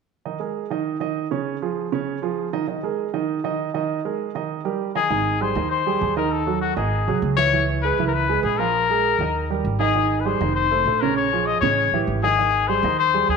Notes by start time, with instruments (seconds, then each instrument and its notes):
0.25 grand piano D#3 D#4 D#5
0.40 grand piano G#3 G#4 A#4
0.70 grand piano D#3 D#4 D#5
1.00 grand piano D#3 D#4 D#5
1.31 grand piano C#3 C#4 C#5
1.62 grand piano F3 F4 G#4
1.92 grand piano C#3 C#4 C#5
2.22 grand piano F3 F4 G#4
2.53 grand piano D#3 D#4 D#5
2.67 grand piano D#3 D#4 D#5
2.83 grand piano G#3 G#4 A#4
3.14 grand piano D#3 D#4 D#5
3.44 grand piano D#3 D#4 D#5
3.74 grand piano D#3 D#4 D#5
4.05 grand piano G#3 G#4 A#4
4.35 grand piano D#3 D#4 D#5
4.65 grand piano G3 G4 A#4
4.95 grand piano D#3 D#4 D#5, trumpet G#4
5.10 upright bass G#1, grand piano D#3 D#4 D#5
5.41 grand piano G3 G4 G#4, trumpet C5
5.55 upright bass D#2, grand piano D#3 D#4 D#5
5.71 trumpet C5
5.86 grand piano G3 G4 G#4
6.01 upright bass D#2, grand piano G3 G4 G#4
6.17 grand piano D#3 D#4 D#5, trumpet A#4
6.32 trumpet A4
6.46 grand piano F#3 F#4 A4
6.61 trumpet F#4
6.76 upright bass G#1, grand piano D#3 D#4 D#5, trumpet G#4
7.08 upright bass C2, grand piano F#3 F#4 G#4
7.22 upright bass C#2
7.37 grand piano E3 E4 E5, trumpet C#5
7.53 grand piano E3 E4 E5
7.82 grand piano G#3 G#4 B4, trumpet B4
7.97 upright bass C#2, grand piano E3 E4 E5
8.07 trumpet A#4
8.14 trumpet B4
8.29 grand piano G#3 G#4 B4
8.43 upright bass A#1, grand piano G#3 G#4 B4, trumpet G#4
8.58 grand piano F3 F4 F5, trumpet A#4
8.90 grand piano G#3 G#4 A#4
9.19 upright bass D#2, grand piano D#3 D#4 D#5
9.50 grand piano G3 G4 A#4
9.65 upright bass G#1
9.80 grand piano D#3 D#4 D#5, trumpet G#4
9.95 grand piano D#3 D#4 D#5
10.20 trumpet B4
10.25 grand piano G3 G4 G#4, trumpet C5
10.40 upright bass F1, grand piano D#3 D#4 D#5
10.55 trumpet C5
10.71 grand piano A3 A4 C5
10.85 upright bass A#1, grand piano A3 A4 C5
11.01 grand piano C#3 C#4 C#5, trumpet A#4
11.16 trumpet C#5
11.32 grand piano F3 F4 G#4
11.46 trumpet D#5
11.60 upright bass A1, grand piano C#3 C#4 C#5, trumpet C#5
11.92 upright bass A1, grand piano E3 E4 G4
12.07 upright bass G#1
12.22 grand piano D#3 D#4 D#5, trumpet G#4
12.38 grand piano D#3 D#4 D#5
12.68 grand piano G3 G4 G#4, trumpet C5
12.83 upright bass D#2, grand piano D#3 D#4 D#5
12.99 trumpet C5
13.14 grand piano G3 G4 G#4
13.29 upright bass D#2, grand piano G3 G4 G#4, trumpet G#4